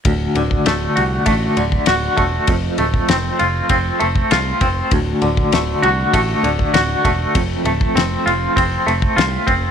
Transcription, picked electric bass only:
0.05 0.25 D1 medium
0.35 0.55 D1 medium
0.66 0.86 D1 medium
0.97 1.17 C2 medium
1.26 1.47 A1 medium
1.57 1.77 D1 medium
1.87 2.07 D1 medium
2.18 2.38 E1 medium
2.48 2.68 F1 medium
2.78 2.98 D1 medium
3.09 3.29 F1 medium
3.41 3.60 F1 medium
3.70 3.90 F1 medium
4.02 4.21 F1 medium
4.32 4.52 C2 medium
4.61 4.81 F1 medium
4.91 5.12 D1 medium
5.22 5.42 D1 medium
5.53 5.73 D1 medium
5.83 6.03 C2 medium
6.13 6.33 A1 medium
6.43 6.63 D1 medium
6.74 6.94 D1 medium
7.05 7.24 E1 medium
7.35 7.55 F1 medium
7.64 7.85 D1 medium
7.95 8.15 F1 medium
8.27 8.46 F1 medium
8.57 8.76 F1 medium
8.87 9.07 F1 medium
9.17 9.37 C2 medium
9.48 9.67 F1 medium

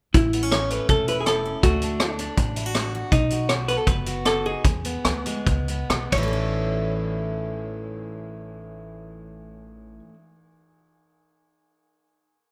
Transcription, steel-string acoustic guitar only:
0.14 0.48 A2 medium
0.34 0.43 B3 soft
0.43 1.44 C#4 soft
0.52 0.85 E3 medium
0.71 1.62 A3 soft
0.89 1.22 E2 medium
1.08 1.64 E4 medium
1.26 1.60 E3 medium
1.46 1.61 C#4 soft
1.63 1.97 D3 medium
1.63 2.00 A3 medium
1.63 1.82 D4 medium
1.83 2.18 D4 medium
2.01 2.34 A3 medium
2.20 3.10 D4 medium
2.38 2.71 A2 medium
2.57 2.66 E4 medium
2.66 2.94 F#4 medium
2.75 3.09 A3 medium
2.95 3.10 F#4 medium
3.12 3.46 B2 medium
3.32 4.06 F#4 medium
3.50 3.83 D#3 medium
3.69 4.63 B3 medium
3.87 4.22 F#2 medium
4.07 4.63 F#4 medium
4.25 4.61 D#3 medium
4.46 4.63 D#4 medium
4.65 5.01 E2 medium
4.85 5.68 B3 medium
5.05 5.42 E3 medium
5.26 6.13 G#3 medium
5.47 5.86 B2 medium
5.70 6.13 B3 medium
5.91 6.13 E3 medium
6.13 10.03 A2 medium
6.18 10.08 E3 medium
6.23 10.13 A3 medium
6.28 10.18 C#4 soft
6.33 10.24 E4 medium

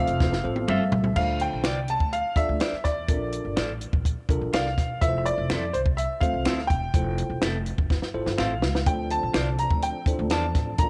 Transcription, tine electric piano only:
0.00 0.34 C4 medium
0.00 0.35 F4 medium
0.00 0.35 A4 medium
0.00 0.35 C5 medium
0.43 0.81 C4 medium
0.43 0.81 F4 medium
0.43 0.81 A4 medium
0.43 0.81 C5 medium
1.17 1.85 D3 medium
1.17 1.66 D4 medium
1.17 1.66 F4 medium
1.17 1.66 A4 medium
1.17 1.66 C5 medium
2.36 2.74 D4 medium
2.36 2.74 F4 medium
2.36 2.74 A4 medium
2.36 2.74 D5 medium
3.08 3.77 A#2 medium
3.08 3.15 C4 medium
3.08 3.58 F4 medium
3.08 3.58 A4 medium
3.08 3.58 A#4 medium
3.14 3.61 D4 medium
4.29 4.66 D4 medium
4.29 4.66 F4 medium
4.29 4.67 A4 medium
4.29 4.67 A#4 medium
5.02 5.51 E4 medium
5.02 5.51 F4 medium
5.02 5.51 A4 medium
5.02 5.08 B4 medium
5.08 5.54 C5 medium
6.22 6.59 C4 medium
6.22 6.59 F4 medium
6.22 6.59 A4 medium
6.22 6.59 C5 medium
6.95 7.44 E4 medium
6.95 7.44 F4 medium
6.95 7.44 A4 medium
6.95 7.44 C5 medium
8.14 8.51 E4 medium
8.14 8.51 F4 medium
8.14 8.51 A4 medium
8.14 8.51 C5 medium
8.87 9.55 D3 soft
8.87 9.36 D4 medium
8.87 9.36 F4 medium
8.87 9.36 A4 medium
8.87 9.36 C5 medium
10.07 10.43 D4 medium
10.07 10.13 E4 medium
10.07 10.44 A4 medium
10.07 10.44 C5 medium
10.13 10.47 F4 medium
10.79 10.89 A#2 medium
10.79 10.89 D4 medium
10.79 10.89 F4 medium
10.79 10.89 A4 medium
10.79 10.89 A#4 medium

